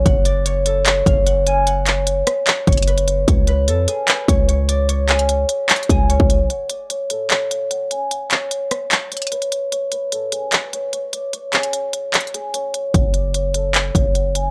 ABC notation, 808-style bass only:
X:1
M:4/4
L:1/16
Q:1/4=149
K:F#m
V:1 name="808-style bass" clef=bass
F,,,8- F,,,2 F,,,6- | F,,,6 z4 F,,,6 | C,,4 ^E,,2 z4 C,,6- | C,,6 z4 C,,3 C,,2 B,,, |
z16 | z16 | z16 | z16 |
F,,,8- F,,,2 F,,,6 |]